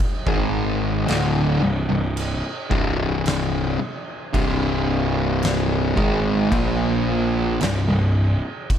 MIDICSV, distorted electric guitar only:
0, 0, Header, 1, 3, 480
1, 0, Start_track
1, 0, Time_signature, 4, 2, 24, 8
1, 0, Key_signature, -3, "minor"
1, 0, Tempo, 1086957
1, 3880, End_track
2, 0, Start_track
2, 0, Title_t, "Distorted electric guitar"
2, 0, Program_c, 0, 30
2, 118, Note_on_c, 0, 44, 96
2, 120, Note_on_c, 0, 51, 106
2, 123, Note_on_c, 0, 56, 104
2, 471, Note_off_c, 0, 44, 0
2, 472, Note_off_c, 0, 51, 0
2, 474, Note_off_c, 0, 56, 0
2, 475, Note_on_c, 0, 38, 89
2, 477, Note_on_c, 0, 45, 92
2, 480, Note_on_c, 0, 50, 106
2, 710, Note_off_c, 0, 38, 0
2, 711, Note_off_c, 0, 45, 0
2, 712, Note_off_c, 0, 50, 0
2, 715, Note_on_c, 0, 36, 61
2, 716, Note_on_c, 0, 43, 65
2, 832, Note_off_c, 0, 36, 0
2, 834, Note_off_c, 0, 43, 0
2, 837, Note_on_c, 0, 36, 68
2, 839, Note_on_c, 0, 43, 68
2, 1030, Note_off_c, 0, 36, 0
2, 1031, Note_off_c, 0, 43, 0
2, 1193, Note_on_c, 0, 36, 99
2, 1196, Note_on_c, 0, 43, 91
2, 1197, Note_on_c, 0, 48, 99
2, 1669, Note_off_c, 0, 36, 0
2, 1670, Note_off_c, 0, 43, 0
2, 1670, Note_off_c, 0, 48, 0
2, 1914, Note_on_c, 0, 36, 90
2, 1917, Note_on_c, 0, 43, 100
2, 1918, Note_on_c, 0, 48, 102
2, 2630, Note_off_c, 0, 36, 0
2, 2631, Note_off_c, 0, 43, 0
2, 2632, Note_off_c, 0, 48, 0
2, 2632, Note_on_c, 0, 44, 94
2, 2634, Note_on_c, 0, 51, 83
2, 2637, Note_on_c, 0, 56, 92
2, 2876, Note_off_c, 0, 44, 0
2, 2876, Note_on_c, 0, 46, 93
2, 2879, Note_off_c, 0, 51, 0
2, 2879, Note_on_c, 0, 53, 97
2, 2880, Note_off_c, 0, 56, 0
2, 2880, Note_on_c, 0, 58, 99
2, 3351, Note_off_c, 0, 46, 0
2, 3353, Note_off_c, 0, 53, 0
2, 3354, Note_off_c, 0, 58, 0
2, 3362, Note_on_c, 0, 36, 57
2, 3363, Note_on_c, 0, 43, 68
2, 3476, Note_off_c, 0, 36, 0
2, 3480, Note_off_c, 0, 43, 0
2, 3481, Note_on_c, 0, 36, 52
2, 3485, Note_on_c, 0, 43, 61
2, 3674, Note_off_c, 0, 36, 0
2, 3676, Note_off_c, 0, 43, 0
2, 3880, End_track
3, 0, Start_track
3, 0, Title_t, "Muted distorted electric guitar strokes"
3, 1675, Note_on_c, 9, 29, 65
3, 1720, Note_off_c, 9, 29, 0
3, 3880, End_track
0, 0, End_of_file